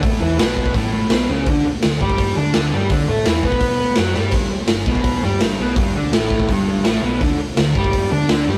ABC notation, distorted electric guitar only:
X:1
M:4/4
L:1/8
Q:1/4=168
K:D
V:1 name="Distorted electric guitar" clef=bass
[A,,A,] [E,E] [B,,B,]2 [A,,A,]2 [B,,B,] [C,C] | [D,D] z D, [G,G]2 [Dd] [D,D] [G,G] | [D,D] [A,A] [E,E] [B,B]3 [F,F] [G,G] | [G,,G,] z G,, [B,,B,]2 [G,G] [G,,G,] [B,,B,] |
[G,,G,] [D,D] [A,,A,]2 [G,,G,]2 [A,,A,] [B,,B,] | [D,D] z D, [G,G]2 [Dd] [D,D] [G,G] |]